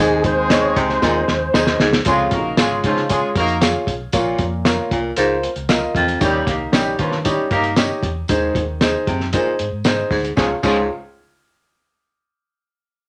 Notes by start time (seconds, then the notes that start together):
0.00 D#2 G#2 D#3 G#3 C4 D#4 G#4 C5 D#5
0.24 C5, kick, closed hi-hat
0.49 D#4 G#4 C5 C#5 D#5, snare, closed hi-hat, tambourine
0.76 C#2 C3 C5, kick, closed hi-hat
0.89 snare
1.02 D#2 A#2 D#4 G#4 C5 D#5, kick, snare, tambourine
1.28 D#2, snare
1.54 D#2 D#4 G#4 C5 D#5, snare, tambourine
1.67 snare
1.80 D2 G#2, snare
1.93 snare
2.05 C#2 F2 C#3 G#3 C#4 F4 G#4 C#5, kick, closed hi-hat, tambourine
2.31 A#1 A#3 D#4 F#4 A#4, kick, closed hi-hat
2.57 G#1 G#3 C#4 F4 G#4 C#5 F5, snare, closed hi-hat, tambourine
2.84 G#2 C#3 F3 G#3 C#4 F4, kick, closed hi-hat
2.97 snare
3.10 G#3 C#4 F4 G#4 C#5, kick, closed hi-hat, tambourine
3.35 F2 A#3 D#4 F#4 A#4, kick, closed hi-hat
3.48 closed hi-hat
3.60 F4 G#4 C#5 F5, snare, closed hi-hat, tambourine
3.87 B1, kick, closed hi-hat
4.12 A#1 A#2 F4 A#4 C#5, kick, closed hi-hat, tambourine
4.39 F2, kick, closed hi-hat
4.65 F4 A#4 C#5 F5, snare, closed hi-hat, tambourine
4.91 C2 A#2, kick, closed hi-hat
5.16 C#2 G#2 F4 A#4 C5, closed hi-hat, tambourine
5.43 closed hi-hat
5.56 C#2, closed hi-hat
5.69 F4 A#4 C#5 D#5 F5, snare, closed hi-hat, tambourine
5.95 E2 F2, kick, closed hi-hat
6.08 closed hi-hat
6.20 D#2 D#3 G3 C#4 D#4 G4 C#5, kick, closed hi-hat, tambourine
6.47 C2 A#3 D#4 G4 A#4, kick, snare, closed hi-hat
6.72 A#1 G3 C#4 D#4 G4 A#4 C#5 D#5, snare, closed hi-hat, tambourine
6.98 G2 D#3 F3 A#3 C#4 F4, kick, closed hi-hat
7.12 snare
7.25 G3 C#4 D#4 G4 C#5, kick, closed hi-hat, tambourine
7.51 G2 A#3 D#4 G4 A#4, kick, closed hi-hat
7.64 closed hi-hat
7.76 C#4 D#4 G4 A#4 C#5 D#5, snare, closed hi-hat, tambourine
8.03 E2, kick, closed hi-hat
8.28 D#2 G#2 D#3 D#4 G#4 C5, kick, closed hi-hat, tambourine
8.55 D#2, kick, closed hi-hat
8.81 D#4 G#4 C5 D#5, snare, closed hi-hat, tambourine
9.07 F#2 C3, kick, closed hi-hat
9.21 snare
9.33 A#2 D#4 G#4 C5, kick, closed hi-hat, tambourine
9.59 G#2, closed hi-hat
9.72 G#2
9.84 D#4 G#4 C5 D#5, snare, closed hi-hat, tambourine
10.11 D2 G#2, kick, open hi-hat
10.25 closed hi-hat
10.37 C#2 G#2 F3 G#3 C#4 F4 G#4 C#5, kick, snare, tambourine
10.63 C#2 G#2 F3 G#3 C#4 F4 G#4 C#5, kick, crash, tambourine